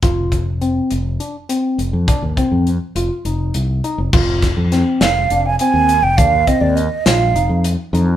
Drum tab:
CC |-------|-------|x------|-------|
HH |xxxxxxx|xxxxxxx|-xxxxxx|xxxxxxx|
SD |-------|-------|-ooo---|---o---|
BD |oo-----|oo-----|oo-----|oo-----|